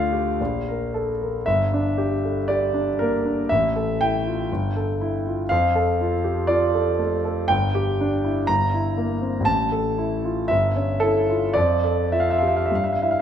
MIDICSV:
0, 0, Header, 1, 2, 480
1, 0, Start_track
1, 0, Tempo, 1065719
1, 652, Time_signature, 2, 2, 24, 8
1, 652, Tempo, 1015228
1, 2092, Tempo, 993377
1, 4492, Tempo, 1027397
1, 4972, Tempo, 1063830
1, 5452, Tempo, 1165049
1, 6139, End_track
2, 0, Start_track
2, 0, Title_t, "Grand piano"
2, 0, Program_c, 0, 0
2, 0, Control_c, 0, 64, 127
2, 0, Note_on_c, 0, 38, 55
2, 0, Note_on_c, 0, 65, 43
2, 0, Note_on_c, 0, 69, 49
2, 0, Note_on_c, 0, 74, 77
2, 0, Note_on_c, 0, 77, 75
2, 56, Note_on_c, 0, 67, 35
2, 130, Note_off_c, 0, 65, 0
2, 167, Note_off_c, 0, 38, 0
2, 178, Note_off_c, 0, 67, 0
2, 184, Note_on_c, 0, 34, 49
2, 185, Control_c, 0, 64, 0
2, 186, Note_off_c, 0, 69, 0
2, 189, Note_off_c, 0, 74, 0
2, 264, Control_c, 0, 64, 127
2, 308, Note_on_c, 0, 70, 40
2, 424, Note_on_c, 0, 69, 47
2, 493, Note_off_c, 0, 70, 0
2, 545, Note_on_c, 0, 70, 37
2, 609, Note_off_c, 0, 69, 0
2, 642, Note_off_c, 0, 34, 0
2, 651, Note_off_c, 0, 77, 0
2, 657, Note_off_c, 0, 70, 0
2, 657, Note_on_c, 0, 76, 77
2, 658, Control_c, 0, 64, 0
2, 664, Note_on_c, 0, 31, 57
2, 723, Control_c, 0, 64, 127
2, 788, Note_on_c, 0, 62, 46
2, 903, Note_on_c, 0, 67, 42
2, 973, Note_off_c, 0, 62, 0
2, 1030, Note_on_c, 0, 69, 32
2, 1091, Note_off_c, 0, 67, 0
2, 1136, Note_off_c, 0, 76, 0
2, 1139, Note_on_c, 0, 74, 70
2, 1142, Note_off_c, 0, 69, 0
2, 1149, Note_on_c, 0, 67, 43
2, 1262, Note_on_c, 0, 62, 41
2, 1333, Note_off_c, 0, 67, 0
2, 1376, Note_off_c, 0, 74, 0
2, 1381, Note_on_c, 0, 70, 70
2, 1390, Note_on_c, 0, 58, 43
2, 1450, Note_off_c, 0, 62, 0
2, 1503, Note_on_c, 0, 62, 37
2, 1574, Note_off_c, 0, 58, 0
2, 1602, Note_off_c, 0, 31, 0
2, 1618, Note_off_c, 0, 70, 0
2, 1619, Note_off_c, 0, 62, 0
2, 1619, Note_on_c, 0, 76, 81
2, 1622, Control_c, 0, 64, 0
2, 1630, Note_on_c, 0, 33, 50
2, 1695, Control_c, 0, 64, 127
2, 1746, Note_on_c, 0, 69, 45
2, 1857, Note_off_c, 0, 76, 0
2, 1862, Note_on_c, 0, 79, 83
2, 1869, Note_on_c, 0, 64, 44
2, 1932, Note_off_c, 0, 69, 0
2, 1988, Note_on_c, 0, 65, 34
2, 2053, Note_off_c, 0, 64, 0
2, 2087, Note_off_c, 0, 33, 0
2, 2100, Note_off_c, 0, 65, 0
2, 2100, Control_c, 0, 64, 0
2, 2106, Note_on_c, 0, 31, 51
2, 2184, Control_c, 0, 64, 127
2, 2223, Note_on_c, 0, 69, 43
2, 2343, Note_on_c, 0, 64, 46
2, 2413, Note_off_c, 0, 69, 0
2, 2465, Note_on_c, 0, 65, 34
2, 2534, Note_off_c, 0, 64, 0
2, 2571, Note_off_c, 0, 31, 0
2, 2574, Note_on_c, 0, 77, 87
2, 2582, Note_off_c, 0, 79, 0
2, 2583, Note_off_c, 0, 65, 0
2, 2584, Note_on_c, 0, 41, 54
2, 2585, Control_c, 0, 64, 0
2, 2652, Control_c, 0, 64, 127
2, 2701, Note_on_c, 0, 69, 54
2, 2825, Note_on_c, 0, 65, 47
2, 2890, Note_off_c, 0, 69, 0
2, 2937, Note_on_c, 0, 67, 35
2, 3012, Note_off_c, 0, 65, 0
2, 3048, Note_on_c, 0, 74, 74
2, 3055, Note_off_c, 0, 77, 0
2, 3055, Note_on_c, 0, 65, 46
2, 3057, Note_off_c, 0, 67, 0
2, 3178, Note_on_c, 0, 69, 47
2, 3249, Note_off_c, 0, 65, 0
2, 3294, Note_off_c, 0, 74, 0
2, 3298, Note_on_c, 0, 57, 47
2, 3372, Note_off_c, 0, 69, 0
2, 3423, Note_on_c, 0, 69, 48
2, 3492, Note_off_c, 0, 57, 0
2, 3524, Note_off_c, 0, 41, 0
2, 3535, Note_on_c, 0, 79, 92
2, 3542, Note_off_c, 0, 69, 0
2, 3543, Note_on_c, 0, 31, 60
2, 3549, Control_c, 0, 64, 0
2, 3624, Control_c, 0, 64, 127
2, 3665, Note_on_c, 0, 67, 52
2, 3789, Note_on_c, 0, 62, 48
2, 3852, Note_off_c, 0, 67, 0
2, 3904, Note_on_c, 0, 64, 39
2, 3973, Note_off_c, 0, 62, 0
2, 4002, Note_off_c, 0, 31, 0
2, 4012, Note_off_c, 0, 79, 0
2, 4015, Note_on_c, 0, 82, 92
2, 4019, Note_off_c, 0, 64, 0
2, 4022, Control_c, 0, 64, 0
2, 4022, Note_on_c, 0, 31, 57
2, 4096, Control_c, 0, 64, 127
2, 4143, Note_on_c, 0, 64, 44
2, 4257, Note_on_c, 0, 58, 47
2, 4329, Note_off_c, 0, 64, 0
2, 4374, Note_on_c, 0, 60, 37
2, 4446, Note_off_c, 0, 58, 0
2, 4464, Note_on_c, 0, 33, 54
2, 4481, Note_off_c, 0, 31, 0
2, 4487, Note_on_c, 0, 81, 92
2, 4492, Note_off_c, 0, 82, 0
2, 4493, Note_off_c, 0, 60, 0
2, 4500, Control_c, 0, 64, 0
2, 4586, Control_c, 0, 64, 127
2, 4613, Note_on_c, 0, 69, 52
2, 4736, Note_on_c, 0, 64, 45
2, 4804, Note_off_c, 0, 69, 0
2, 4858, Note_on_c, 0, 65, 37
2, 4927, Note_off_c, 0, 64, 0
2, 4944, Note_off_c, 0, 33, 0
2, 4968, Note_on_c, 0, 76, 79
2, 4970, Note_off_c, 0, 81, 0
2, 4976, Note_off_c, 0, 65, 0
2, 4978, Control_c, 0, 64, 0
2, 4979, Note_on_c, 0, 31, 60
2, 5061, Control_c, 0, 64, 127
2, 5095, Note_on_c, 0, 61, 43
2, 5203, Note_on_c, 0, 69, 80
2, 5207, Note_off_c, 0, 76, 0
2, 5214, Note_on_c, 0, 64, 49
2, 5283, Note_off_c, 0, 61, 0
2, 5335, Note_on_c, 0, 65, 34
2, 5405, Note_off_c, 0, 64, 0
2, 5442, Note_off_c, 0, 31, 0
2, 5445, Note_on_c, 0, 74, 82
2, 5449, Note_off_c, 0, 69, 0
2, 5455, Note_off_c, 0, 65, 0
2, 5455, Note_on_c, 0, 41, 55
2, 5458, Control_c, 0, 64, 0
2, 5537, Control_c, 0, 64, 127
2, 5571, Note_on_c, 0, 69, 49
2, 5680, Note_off_c, 0, 74, 0
2, 5687, Note_on_c, 0, 76, 67
2, 5688, Note_on_c, 0, 65, 45
2, 5719, Note_on_c, 0, 77, 66
2, 5721, Note_off_c, 0, 76, 0
2, 5755, Note_off_c, 0, 77, 0
2, 5757, Note_off_c, 0, 69, 0
2, 5762, Note_on_c, 0, 76, 69
2, 5795, Note_off_c, 0, 76, 0
2, 5795, Note_on_c, 0, 77, 61
2, 5812, Note_on_c, 0, 67, 33
2, 5829, Note_off_c, 0, 77, 0
2, 5834, Note_on_c, 0, 76, 58
2, 5867, Note_off_c, 0, 76, 0
2, 5870, Note_on_c, 0, 77, 61
2, 5878, Note_off_c, 0, 65, 0
2, 5903, Note_off_c, 0, 77, 0
2, 5907, Note_on_c, 0, 76, 60
2, 5912, Note_off_c, 0, 41, 0
2, 5929, Note_off_c, 0, 67, 0
2, 5931, Note_on_c, 0, 43, 47
2, 5933, Control_c, 0, 64, 0
2, 5941, Note_off_c, 0, 76, 0
2, 5946, Note_on_c, 0, 77, 64
2, 5979, Note_off_c, 0, 77, 0
2, 5982, Note_on_c, 0, 76, 57
2, 6015, Note_off_c, 0, 76, 0
2, 6018, Note_on_c, 0, 77, 54
2, 6019, Control_c, 0, 64, 127
2, 6052, Note_off_c, 0, 77, 0
2, 6058, Note_on_c, 0, 76, 54
2, 6060, Note_on_c, 0, 64, 36
2, 6091, Note_off_c, 0, 76, 0
2, 6094, Note_on_c, 0, 77, 55
2, 6128, Note_off_c, 0, 77, 0
2, 6139, Note_off_c, 0, 43, 0
2, 6139, Note_off_c, 0, 64, 0
2, 6139, End_track
0, 0, End_of_file